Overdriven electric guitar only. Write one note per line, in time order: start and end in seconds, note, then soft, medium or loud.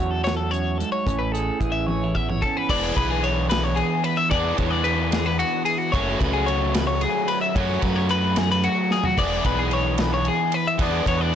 2.70 4.31 E3 medium
2.70 4.31 B3 loud
2.70 4.31 D4 medium
2.70 4.35 G#4 loud
4.32 5.92 E3 medium
4.32 5.93 B3 loud
4.32 5.93 D4 loud
4.32 5.96 G#4 loud
5.93 7.56 F#3 loud
5.93 7.54 A3 loud
5.93 7.58 C#4 loud
5.97 7.59 F#4 loud
7.56 9.17 F#3 loud
7.56 9.17 A3 medium
7.56 9.19 C#4 loud
7.56 9.20 F#4 loud
9.17 10.78 E3 medium
9.17 10.80 B3 loud
9.17 10.81 D4 medium
9.17 10.82 G#4 medium
10.79 11.35 E3 medium
10.79 11.35 B3 loud
10.79 11.35 D4 loud
10.79 11.35 G#4 medium